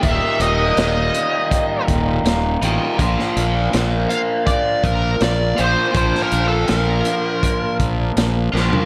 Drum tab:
HH |x-x-x-x-x-x-x-x-|x-x-x-x-x-x-x-x-|x-x-x-x-x-x-x---|
SD |----o-------o---|-o--o-------o---|-o--o-------o-o-|
FT |----------------|----------------|---------------o|
BD |o-------o-o-----|o-------o-o-----|o-------o-o-----|